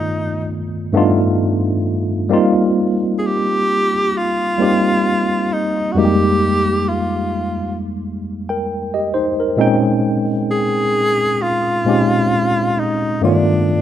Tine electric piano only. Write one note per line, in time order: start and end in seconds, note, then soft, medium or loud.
0.00 0.27 G2 medium
0.00 0.29 D#3 medium
0.00 0.28 A3 medium
0.00 0.28 B3 medium
0.00 0.33 F4 medium
0.00 0.28 D5 medium
0.93 2.15 G2 medium
0.93 2.15 A3 medium
0.93 2.15 B3 medium
0.93 2.16 D4 medium
0.93 2.16 D#4 medium
0.97 2.17 F4 medium
2.29 3.91 G3 medium
2.29 3.91 A#3 medium
2.29 3.92 C4 medium
2.29 3.92 D#4 medium
2.29 3.93 F4 medium
4.58 5.79 G3 medium
4.58 5.79 A#3 medium
4.58 5.80 C4 medium
4.58 5.80 D#4 medium
4.62 5.81 G4 medium
5.95 7.55 F2 medium
5.95 7.56 G3 medium
5.95 7.56 G#3 medium
5.95 7.56 A#3 medium
5.95 7.57 D#4 medium
5.95 6.04 F#4 medium
6.05 7.60 G4 medium
8.49 8.92 A#4 soft
8.49 8.92 G5 medium
8.94 9.13 G4 soft
8.94 9.12 D#5 medium
9.14 9.38 D#4 soft
9.14 9.38 C5 medium
9.40 9.83 A#4 medium
9.57 11.18 A#2 medium
9.57 11.19 G#3 medium
9.57 11.19 C4 medium
9.57 11.19 C#4 medium
9.57 11.20 D#4 medium
9.61 11.20 G5 medium
11.85 13.06 A#2 medium
11.85 13.07 G#3 medium
11.85 13.07 C4 medium
11.85 13.07 C#4 medium
11.85 13.08 D#4 medium
11.89 13.08 G4 medium
13.21 13.82 G2 medium
13.21 13.82 D#3 medium
13.21 13.82 A3 medium
13.21 13.82 B3 medium
13.21 13.82 F4 medium
13.21 13.82 D5 medium